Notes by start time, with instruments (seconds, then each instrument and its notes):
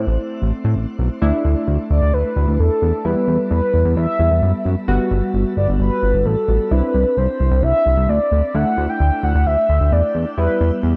Already playing: synth keys A3 C4 E4, soft synth lead C5
0.07 analog synth bass A1
0.42 analog synth bass A1
0.64 analog synth bass A2
0.76 analog synth bass A1
0.99 analog synth bass B1
1.22 analog synth bass D2, synth keys A3 D4 E4
1.45 analog synth bass D2
1.68 analog synth bass D2
1.90 analog synth bass D2, soft synth lead D5
2.02 analog synth bass D2
2.13 analog synth bass D2, soft synth lead B4
2.36 analog synth bass D2
2.48 analog synth bass D2
2.59 analog synth bass E2, soft synth lead A4
2.82 analog synth bass E2
3.05 analog synth bass E2, synth keys G3 B3 E4, soft synth lead B4
3.28 analog synth bass E2
3.51 analog synth bass E2, soft synth lead B4
3.74 analog synth bass E2
3.85 analog synth bass E2
3.96 analog synth bass E2, soft synth lead E5
4.19 analog synth bass E2, synth keys G3 B3 E4
4.31 analog synth bass E2
4.42 analog synth bass F#2
4.65 analog synth bass F#2
4.88 analog synth bass G1, synth keys G3 B3 F#4
5.11 analog synth bass G1
5.34 analog synth bass G1
5.57 analog synth bass G1, soft synth lead D5
5.68 analog synth bass G1
5.80 analog synth bass G1, soft synth lead B4
6.03 analog synth bass G1
6.14 analog synth bass G1
6.26 analog synth bass A1, soft synth lead A4
6.48 analog synth bass A1, synth keys G3 B3 F#4
6.71 analog synth bass C2, synth keys C4 D4 E4, soft synth lead B4
6.94 analog synth bass C2
7.17 analog synth bass C2, soft synth lead C5
7.40 analog synth bass C2
7.51 analog synth bass C2
7.63 analog synth bass C2, soft synth lead E5
7.86 analog synth bass C2
7.97 analog synth bass C2
8.09 analog synth bass D2, soft synth lead D5
8.32 analog synth bass D2
8.54 analog synth bass D2, synth keys A3 D4 E4, soft synth lead F#5
8.77 analog synth bass D2
8.89 soft synth lead G5
9.00 analog synth bass D2
9.23 analog synth bass D2, soft synth lead F#5
9.35 analog synth bass D2
9.46 analog synth bass D2, soft synth lead E5
9.69 analog synth bass D2
9.81 analog synth bass D2
9.92 analog synth bass E2, soft synth lead D5
10.15 analog synth bass E2
10.38 analog synth bass E2, synth keys G3 B3 E4, soft synth lead B4
10.60 analog synth bass E2
10.83 analog synth bass E2